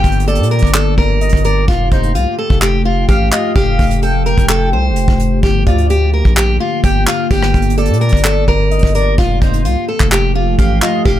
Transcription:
0.00 1.64 D3 medium
0.00 1.64 A#3 medium
0.00 0.25 G4 loud
0.00 9.14 G4 medium
0.00 0.25 G5 loud
0.00 downlifter medium
0.04 0.41 G1 loud
0.04 kick loud
0.04 closed hi-hat medium
0.12 closed hi-hat medium
0.20 closed hi-hat medium
0.28 0.47 A4 medium
0.28 1.17 D5 medium
0.28 closed hi-hat medium
0.35 0.61 A#2 loud
0.35 closed hi-hat medium
0.43 closed hi-hat medium
0.51 0.70 A#4 medium
0.51 closed hi-hat soft
0.59 0.96 G1 loud
0.59 kick medium
0.59 closed hi-hat medium
0.67 closed hi-hat medium
0.74 0.94 A4 medium
0.74 clap loud
0.74 closed hi-hat medium
0.98 1.32 G1 loud
0.98 1.42 A#4 medium
0.98 kick medium
1.21 1.43 D#5 medium
1.21 closed hi-hat medium
1.29 1.67 G1 loud
1.29 kick loud
1.29 closed hi-hat medium
1.37 closed hi-hat medium
1.45 1.64 A#4 medium
1.45 1.67 D5 medium
1.45 closed hi-hat medium
1.68 1.91 F1 loud
1.68 5.39 F3 medium
1.68 5.39 A3 medium
1.68 1.88 F4 medium
1.68 kick loud
1.68 closed hi-hat medium
1.92 2.17 F1 loud
1.92 2.11 D#4 medium
1.92 2.14 C5 medium
1.92 kick loud
1.92 closed hi-hat medium
2.03 closed hi-hat medium
2.15 2.26 C2 loud
2.15 2.34 F4 medium
2.15 closed hi-hat medium
2.39 2.58 A4 medium
2.50 3.06 F1 loud
2.50 kick medium
2.62 2.81 G4 medium
2.62 clap loud
2.62 closed hi-hat medium
2.85 3.05 F4 medium
3.09 3.31 A1 loud
3.09 3.28 G4 medium
3.09 3.31 F5 loud
3.09 kick loud
3.09 closed hi-hat medium
3.32 3.51 F4 medium
3.32 3.55 D#5 medium
3.32 clap loud
3.32 closed hi-hat medium
3.55 3.78 F1 loud
3.55 4.00 G4 loud
3.55 4.00 F5 loud
3.55 kick loud
3.55 closed hi-hat medium
3.79 4.35 F1 loud
3.79 kick medium
3.79 closed hi-hat soft
3.79 open hi-hat medium
3.91 closed hi-hat medium
4.02 4.22 A4 medium
4.02 5.39 G5 loud
4.02 closed hi-hat medium
4.26 4.45 A#4 medium
4.26 closed hi-hat soft
4.38 4.74 F1 loud
4.38 kick medium
4.38 closed hi-hat medium
4.49 4.69 A4 medium
4.49 clap loud
4.73 4.92 C2 loud
4.73 5.39 C5 medium
4.90 5.07 F1 loud
4.96 closed hi-hat medium
5.08 5.42 F1 loud
5.08 kick loud
5.20 closed hi-hat medium
5.43 5.66 G1 loud
5.43 9.14 D3 medium
5.43 9.14 A#3 medium
5.43 5.63 G4 medium
5.43 kick loud
5.43 closed hi-hat medium
5.66 6.23 D2 loud
5.66 5.86 F4 medium
5.66 5.89 D5 medium
5.66 kick medium
5.66 closed hi-hat medium
5.78 closed hi-hat medium
5.90 6.10 G4 medium
5.90 closed hi-hat medium
6.14 6.33 A#4 medium
6.25 6.59 A#1 loud
6.25 kick medium
6.37 6.56 G4 medium
6.37 clap loud
6.37 closed hi-hat medium
6.60 6.80 F4 medium
6.84 7.06 G1 loud
6.84 7.03 G4 medium
6.84 7.06 G5 loud
6.84 kick loud
6.84 closed hi-hat medium
7.07 7.27 F4 medium
7.07 7.29 F5 medium
7.07 clap loud
7.07 closed hi-hat medium
7.31 7.53 G1 loud
7.31 7.75 G4 loud
7.31 7.75 G5 loud
7.31 kick loud
7.31 closed hi-hat medium
7.43 cross-stick loud
7.54 7.91 G1 loud
7.54 kick medium
7.54 closed hi-hat medium
7.62 closed hi-hat medium
7.70 closed hi-hat medium
7.78 7.97 A4 medium
7.78 8.68 D5 medium
7.78 closed hi-hat medium
7.85 8.12 A#2 loud
7.85 closed hi-hat medium
7.93 closed hi-hat medium
8.01 8.20 A#4 medium
8.01 closed hi-hat soft
8.09 8.46 G1 loud
8.09 kick medium
8.09 closed hi-hat medium
8.17 closed hi-hat medium
8.25 8.44 A4 medium
8.25 clap loud
8.48 8.82 G1 loud
8.48 8.92 A#4 medium
8.48 kick medium
8.71 8.94 D#5 medium
8.71 closed hi-hat medium
8.79 9.17 G1 loud
8.79 kick loud
8.79 closed hi-hat medium
8.87 closed hi-hat medium
8.95 9.14 A#4 medium
8.95 9.17 D5 medium
8.95 closed hi-hat medium
9.18 9.41 F1 loud
9.18 11.20 F3 medium
9.18 11.20 A3 medium
9.18 9.38 F4 loud
9.18 11.20 G4 medium
9.18 kick loud
9.18 closed hi-hat medium
9.42 9.67 F1 loud
9.42 9.61 D#4 medium
9.42 9.64 C5 medium
9.42 kick medium
9.42 closed hi-hat medium
9.53 closed hi-hat medium
9.65 9.76 C2 loud
9.65 9.84 F4 medium
9.65 closed hi-hat medium
9.88 10.08 A4 medium
10.00 10.56 F1 loud
10.00 kick medium
10.00 clap medium
10.12 10.31 G4 medium
10.12 clap loud
10.12 closed hi-hat medium
10.35 10.55 F4 medium
10.59 10.81 A1 loud
10.59 10.78 G4 medium
10.59 10.81 F5 medium
10.59 kick medium
10.59 closed hi-hat medium
10.82 11.02 F4 medium
10.82 11.05 D#5 medium
10.82 clap loud
10.82 closed hi-hat medium
11.05 11.20 F1 loud
11.05 11.20 G4 loud
11.05 11.20 F5 loud
11.05 kick loud
11.05 closed hi-hat medium

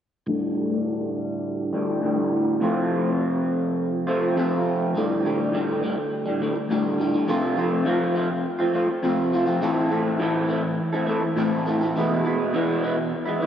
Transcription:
0.27 1.72 D2 medium
0.27 1.72 A2 medium
0.27 1.72 D3 medium
0.27 1.72 G3 medium
1.73 2.01 D2 medium
1.73 2.02 A2 medium
1.73 2.01 D3 medium
1.73 2.01 G3 medium
2.02 2.59 D2 medium
2.02 2.60 A2 medium
2.02 2.60 D3 medium
2.02 2.61 G3 medium
2.60 4.05 F2 medium
2.60 4.06 C3 medium
2.60 4.06 F3 medium
2.60 4.06 A3 medium
2.60 4.06 C4 medium
2.60 4.06 F4 medium
4.07 4.35 F2 medium
4.07 4.35 C3 medium
4.07 4.36 F3 medium
4.07 4.35 A3 medium
4.07 4.35 C4 medium
4.07 4.35 F4 medium
4.36 4.93 F2 medium
4.36 4.93 C3 medium
4.36 4.93 F3 medium
4.36 4.94 A3 medium
4.36 4.94 C4 medium
4.36 4.94 F4 medium
4.95 5.23 D2 medium
4.95 5.24 A2 medium
4.95 5.25 D3 medium
4.95 5.25 G3 medium
5.24 5.51 D2 medium
5.24 5.52 A2 medium
5.24 5.53 D3 medium
5.24 5.54 G3 medium
5.52 5.80 D2 medium
5.52 5.82 A2 medium
5.52 5.82 D3 medium
5.52 5.83 G3 medium
5.82 6.26 D2 medium
5.82 5.97 A2 medium
5.82 5.97 D3 medium
5.82 5.96 G3 medium
5.97 muted clean electric guitar stroke soft
6.26 6.40 A2 soft
6.26 6.41 D3 medium
6.26 6.42 G3 medium
6.40 6.68 D2 medium
6.40 6.55 A2 medium
6.40 6.55 D3 medium
6.40 6.54 G3 medium
6.56 muted clean electric guitar stroke soft
6.69 6.97 D2 medium
6.69 6.98 A2 medium
6.69 6.99 D3 medium
6.69 7.00 G3 medium
6.99 7.26 D2 medium
6.99 7.15 A2 medium
6.99 7.13 D3 medium
6.99 7.12 G3 medium
7.13 7.27 A2 medium
7.13 7.27 D3 medium
7.13 7.26 G3 medium
7.27 7.84 F2 medium
7.27 7.85 C3 medium
7.27 7.55 F3 medium
7.27 7.57 A3 medium
7.27 7.58 C4 medium
7.27 7.57 F4 medium
7.56 7.85 F3 medium
7.56 7.87 A3 medium
7.56 7.87 C4 medium
7.56 7.86 F4 medium
7.85 8.44 F2 medium
7.85 8.44 C3 medium
7.85 8.14 F3 medium
7.85 8.15 A3 medium
7.85 8.16 C4 medium
7.85 8.16 F4 medium
8.15 8.29 F3 medium
8.15 8.29 A3 medium
8.15 8.29 C4 medium
8.15 8.29 F4 medium
8.30 muted clean electric guitar stroke soft
8.59 8.72 F3 soft
8.59 8.73 A3 medium
8.59 8.74 C4 medium
8.59 8.74 F4 medium
8.73 8.88 F3 medium
8.73 8.88 A3 medium
8.73 8.88 C4 medium
8.73 8.87 F4 medium
8.89 muted clean electric guitar stroke soft
9.03 9.60 F2 medium
9.03 9.60 C3 medium
9.03 9.31 F3 medium
9.03 9.32 A3 medium
9.03 9.33 C4 medium
9.03 9.34 F4 medium
9.32 9.47 F3 medium
9.32 9.47 A3 medium
9.32 9.46 C4 medium
9.32 9.45 F4 medium
9.46 9.60 F3 soft
9.46 9.60 A3 medium
9.46 9.60 C4 medium
9.46 9.59 F4 medium
9.61 10.18 A2 medium
9.61 10.19 E3 medium
9.61 9.89 A3 medium
9.61 9.90 C4 loud
9.61 9.92 E4 medium
9.61 9.91 A4 loud
9.90 10.19 A3 medium
9.90 10.20 C4 medium
9.90 10.21 E4 medium
9.90 10.20 A4 medium
10.19 10.78 A2 medium
10.19 11.36 E3 loud
10.19 10.47 A3 medium
10.19 10.48 C4 medium
10.19 10.50 E4 medium
10.19 10.50 A4 medium
10.48 10.63 A3 medium
10.48 10.63 C4 medium
10.48 10.62 E4 medium
10.48 10.62 A4 medium
10.63 muted clean electric guitar stroke soft
10.93 11.06 A3 medium
10.93 11.07 C4 medium
10.93 11.08 E4 medium
10.93 11.08 A4 medium
11.07 11.22 A3 medium
11.07 11.22 C4 medium
11.07 11.22 E4 medium
11.07 11.22 A4 medium
11.23 muted clean electric guitar stroke medium
11.36 11.93 A2 medium
11.36 11.93 E3 medium
11.36 11.65 A3 medium
11.36 11.66 C4 medium
11.36 11.67 E4 loud
11.36 11.67 A4 loud
11.66 11.82 A3 medium
11.66 11.81 C4 medium
11.66 11.81 E4 medium
11.66 11.80 A4 medium
11.81 11.95 A3 medium
11.81 11.94 C4 medium
11.81 11.94 E4 medium
11.81 11.93 A4 medium
11.95 12.52 E2 medium
11.95 12.53 B2 medium
11.95 12.23 E3 medium
11.95 12.24 G#3 medium
11.95 12.24 B3 medium
11.95 12.25 E4 loud
12.24 12.53 E3 medium
12.24 12.53 G#3 medium
12.24 12.54 B3 medium
12.24 12.54 E4 medium
12.53 13.12 E2 medium
12.53 13.12 B2 medium
12.53 12.81 E3 medium
12.53 12.82 G#3 medium
12.53 12.83 B3 medium
12.53 12.84 E4 medium
12.83 12.97 E3 medium
12.83 12.97 G#3 medium
12.83 12.97 B3 medium
12.83 12.96 E4 medium
12.97 muted clean electric guitar stroke medium
13.26 13.39 E3 medium
13.26 13.40 G#3 medium
13.26 13.41 B3 medium
13.26 13.42 E4 medium
13.40 13.46 E3 medium
13.40 13.46 G#3 medium
13.40 13.46 B3 medium
13.40 13.46 E4 medium

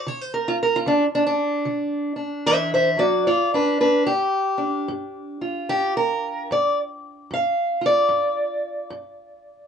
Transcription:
0.07 0.81 D3 medium
0.07 0.21 C#5 loud
0.21 0.32 C5 loud
0.34 0.57 A#4 medium
0.48 0.55 F4 medium
0.63 0.78 A#4 medium
0.76 0.86 F4 medium
0.86 1.61 D3 medium
0.86 1.04 D4 loud
1.15 1.25 D4 loud
1.27 2.12 D4 loud
1.65 2.41 D3 medium
2.16 3.27 D4 medium
2.46 2.97 E3 medium
2.46 2.55 C5 loud
2.46 2.73 E5 loud
2.74 2.89 C5 medium
2.74 3.01 E5 medium
2.97 3.28 F#3 medium
2.97 3.27 F#4 medium
2.97 3.26 D5 medium
3.27 4.02 G2 medium
3.27 3.54 F4 medium
3.27 3.54 D5 medium
3.54 3.79 D4 medium
3.54 3.80 B4 loud
3.81 4.08 D4 medium
3.81 4.06 B4 medium
4.07 4.83 G2 medium
4.07 4.88 G4 loud
4.58 7.81 D4 medium
4.88 5.63 G2 medium
5.41 6.54 F4 medium
5.69 6.44 G2 medium
5.69 5.96 G4 loud
5.97 6.50 A#4 loud
6.51 7.25 G2 medium
6.51 6.78 D5 loud
7.31 8.05 G2 medium
7.31 7.85 F5 medium
7.81 9.68 F4 medium
7.86 9.68 D5 loud
8.09 8.84 G2 medium
8.90 9.65 G2 medium

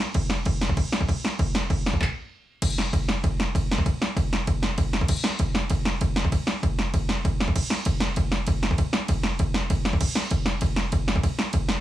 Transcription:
0.14 kick loud
0.14 crash medium
0.30 snare loud
0.45 kick loud
0.45 crash medium
0.61 snare loud
0.69 kick medium
0.77 kick medium
0.77 crash medium
0.92 snare loud
1.01 kick medium
1.09 kick loud
1.09 crash medium
1.25 snare loud
1.39 kick loud
1.39 crash medium
1.55 snare loud
1.70 kick loud
1.70 crash medium
1.86 snare loud
1.93 kick medium
2.01 kick medium
2.01 clap medium
2.62 kick loud
2.62 crash loud
2.62 ride medium
2.78 snare loud
2.93 kick loud
2.93 ride medium
3.09 snare loud
3.24 kick loud
3.24 ride medium
3.40 snare loud
3.55 kick loud
3.55 ride medium
3.71 snare loud
3.78 kick medium
3.86 kick loud
3.86 ride medium
4.02 snare loud
4.17 kick loud
4.17 ride medium
4.33 snare loud
4.47 kick loud
4.47 ride medium
4.63 snare loud
4.78 kick loud
4.78 ride medium
4.93 snare loud
5.01 kick medium
5.08 kick loud
5.08 crash loud
5.24 snare loud
5.39 kick loud
5.39 ride medium
5.55 snare loud
5.70 kick loud
5.70 ride medium
5.85 snare loud
6.01 kick loud
6.01 ride medium
6.16 snare loud
6.25 kick loud
6.32 kick loud
6.32 ride medium
6.47 snare loud
6.63 kick loud
6.63 ride medium
6.79 snare loud
6.94 kick loud
6.94 ride medium
7.09 snare loud
7.25 kick loud
7.25 ride medium
7.40 snare loud
7.48 kick medium
7.56 kick loud
7.56 crash loud
7.70 snare loud
7.85 kick loud
7.85 ride medium
8.00 snare loud
8.16 kick loud
8.16 ride medium
8.32 snare loud
8.47 kick loud
8.47 ride medium
8.63 snare loud
8.71 kick medium
8.78 kick loud
8.78 ride medium
8.93 snare loud
9.08 kick loud
9.08 ride medium
9.23 snare loud
9.39 kick loud
9.39 ride medium
9.54 snare loud
9.70 kick loud
9.70 ride medium
9.85 snare loud
9.93 kick medium
10.01 kick loud
10.01 crash loud
10.15 snare loud
10.31 kick loud
10.31 ride medium
10.46 snare loud
10.61 kick loud
10.61 ride medium
10.76 snare loud
10.92 kick loud
10.92 ride medium
11.08 snare loud
11.16 kick medium
11.23 kick loud
11.23 ride medium
11.39 snare loud
11.53 kick loud
11.53 ride medium
11.69 snare loud

